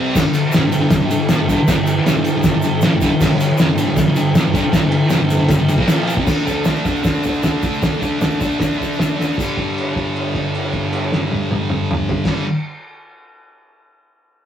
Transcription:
Already playing: distorted electric guitar C3 G3
0.00 distorted electric guitar C4
0.15 distorted electric guitar G2 D3, kick, snare, crash, shaker
0.25 distorted electric guitar G2 D3
0.34 ride, shaker
0.52 distorted electric guitar F2, snare, ride, shaker
0.56 distorted electric guitar C3
0.64 distorted electric guitar G2 D3
0.72 distorted electric guitar G2 D3, ride, shaker
0.80 distorted electric guitar G2 D3
0.90 kick, snare, ride, shaker
1.00 distorted electric guitar G2 D3
1.10 distorted electric guitar G2 D3, ride, shaker
1.29 distorted electric guitar A#2 F3, snare, ride, shaker
1.41 distorted electric guitar G2 D3
1.49 distorted electric guitar G2 D3, kick, ride, shaker
1.59 muted distorted electric guitar stroke
1.68 distorted electric guitar G2 D3, kick, snare, ride, shaker
1.78 distorted electric guitar G2 D3
1.87 ride, shaker
2.06 distorted electric guitar F2 C3, snare, ride, shaker
2.16 distorted electric guitar G2 D3
2.23 distorted electric guitar G2 D3, ride, shaker
2.36 distorted electric guitar G2 D3
2.43 kick, snare, ride, shaker
2.55 distorted electric guitar G2 D3
2.62 distorted electric guitar D3, ride, shaker
2.66 distorted electric guitar G2
2.81 distorted electric guitar A#2 F3, snare, ride, shaker
2.94 distorted electric guitar G2 D3
3.01 distorted electric guitar G2 D3, kick, ride, shaker
3.13 muted distorted electric guitar stroke
3.21 distorted electric guitar G2 D3, kick, snare, crash, shaker
3.33 distorted electric guitar G2 D3
3.40 ride, shaker
3.58 distorted electric guitar F2 C3, snare, ride, shaker
3.70 distorted electric guitar G2 D3
3.78 distorted electric guitar G2 D3, ride, shaker
3.87 distorted electric guitar G2 D3
3.97 kick, snare, ride, shaker
4.08 distorted electric guitar G2 D3
4.16 distorted electric guitar G2 D3, ride, shaker
4.35 distorted electric guitar A#2 F3, snare, ride, shaker
4.45 distorted electric guitar G2 D3
4.53 distorted electric guitar G2 D3, kick, ride, shaker
4.65 muted distorted electric guitar stroke
4.72 distorted electric guitar G2 D3, kick, snare, ride, shaker
4.84 distorted electric guitar G2 D3
4.92 ride
5.10 distorted electric guitar F2 C3, snare, ride, shaker
5.22 distorted electric guitar G2 D3
5.30 distorted electric guitar G2 D3, ride, shaker
5.39 distorted electric guitar G2 D3
5.48 kick, snare, ride, shaker
5.59 distorted electric guitar G2 D3
5.68 distorted electric guitar G2 D3, ride, shaker
5.78 distorted electric guitar A#2 F3 A#3, kick
5.87 snare, ride, shaker
6.07 ride, shaker
6.16 distorted electric guitar C3 G3, kick
6.25 distorted electric guitar D3 A3 D4, kick, snare, floor tom, crash, shaker
6.39 shaker
6.44 distorted electric guitar D3 A3 D4, floor tom, shaker
6.65 distorted electric guitar D3 A3 D4, snare, floor tom, shaker
6.84 distorted electric guitar D3 A3 D4, kick, floor tom, shaker
6.96 shaker
7.02 distorted electric guitar D3 A3 D4, kick, snare, floor tom, shaker
7.14 shaker
7.23 distorted electric guitar D3 A3 D4, floor tom, shaker
7.43 distorted electric guitar D3 A3 D4, snare, floor tom, shaker
7.62 distorted electric guitar D3 A3 D4, kick, floor tom, shaker
7.73 shaker
7.82 distorted electric guitar D3 A3 D4, kick, snare, floor tom, shaker
8.01 distorted electric guitar D3 A3 D4, floor tom, shaker
8.20 distorted electric guitar D3 A3 D4, snare, floor tom, shaker
8.40 distorted electric guitar D3 A3 D4, kick, floor tom, shaker
8.59 distorted electric guitar D3 A3 D4, kick, snare, floor tom, shaker
8.77 distorted electric guitar D3 A3 D4, floor tom
8.82 shaker
8.93 distorted electric guitar D3, shaker
8.98 distorted electric guitar A3 D4, snare, floor tom, shaker
9.17 distorted electric guitar D3 A3 D4, snare
9.22 shaker
9.33 distorted electric guitar G2, shaker
9.38 distorted electric guitar D3 G3, kick, crash, shaker
9.57 kick, crash
9.78 crash
9.96 kick, crash
10.16 crash
10.35 kick, crash
10.54 crash
10.73 kick, crash
10.92 crash
11.12 snare
11.32 high tom
11.51 high tom
11.70 mid tom
11.91 mid tom
12.09 floor tom
12.25 distorted electric guitar G2 D3 G3, kick, snare, crash

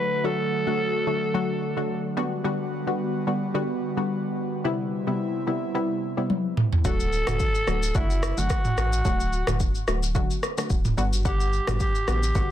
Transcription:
Already playing: analog synth pad D3 F#3 A3 F#4, alto saxophone B4
0.24 synth pluck D3 F#3 A3 F#4, alto saxophone A4
0.67 synth pluck D3 F#3 A3 F#4
1.07 synth pluck D3 F#3 A3 F#4
1.34 synth pluck D3 F#3 A3 F#4
1.77 synth pluck D3 F#3 A3 F#4
2.17 synth pluck D3 G3 B3 F#4, analog synth pad G3 B3 F#4
2.44 synth pluck D3 G3 B3 F#4
2.87 synth pluck D3 G3 B3 F#4
3.27 synth pluck D3 G3 B3 F#4
3.54 synth pluck D3 G3 B3 F#4
3.97 synth pluck D3 G3 B3 F#4
4.64 synth pluck C3 G3 B3 E4, analog synth pad C3 E4
5.07 synth pluck C3 G3 B3 E4
5.47 synth pluck C3 G3 B3 E4
5.74 synth pluck C3 G3 B3 E4
6.17 synth pluck C3 G3 B3 E4
6.30 high tom
6.57 mid tom
6.73 floor tom
6.85 sub bass D1, synth pluck D3 F#3 A3 F#4, alto saxophone A4, kick, shaker
7.00 shaker
7.13 shaker
7.27 sub bass E1, synth pluck D3 F#3 A3 F#4, cross-stick, mid tom, shaker
7.40 kick, shaker
7.55 shaker
7.67 sub bass D1, synth pluck D3 F#3 A3 F#4, cross-stick, shaker
7.83 shaker
7.95 sub bass F#1, synth pluck D3 F#3 A3 F#4, alto saxophone E4, kick, shaker
8.10 shaker
8.23 cross-stick, shaker
8.37 sub bass F#1, synth pluck D3 F#3 A3 F#4, alto saxophone F#4, shaker
8.50 kick, cross-stick, shaker
8.65 mid tom, shaker
8.78 sub bass A1, alto saxophone F#4, cross-stick, shaker
8.93 shaker
9.05 sub bass D1, synth pluck D3 F#3 A3 F#4, kick, shaker
9.20 shaker
9.33 shaker
9.47 sub bass E1, synth pluck D3 F#3 A3 F#4, cross-stick, mid tom, shaker
9.60 kick, shaker
9.75 shaker
9.87 sub bass D1, synth pluck D3 F#3 A3 F#4, cross-stick, shaker
10.03 shaker
10.15 synth pluck D3 F#3 A3 F#4, kick, shaker
10.31 shaker
10.43 cross-stick, shaker
10.58 synth pluck D3 F#3 A3 F#4, cross-stick, shaker
10.70 sub bass D1, kick, shaker
10.85 mid tom, shaker
10.97 sub bass G1, synth pluck D3 G3 B3 F#4, shaker
11.13 shaker
11.25 synth pluck D3 G3 B3 F#5, alto saxophone G4, kick, shaker
11.40 shaker
11.53 shaker
11.67 sub bass G1, synth pluck D3 G3 B3 F#4, cross-stick, mid tom, shaker
11.80 alto saxophone G4, kick, shaker
11.95 shaker
12.08 sub bass A1, synth pluck D3 G3 B3 F#4, alto saxophone G4, cross-stick, shaker
12.23 shaker
12.35 sub bass G1, synth pluck D3 G3 B3 F#4, kick, shaker

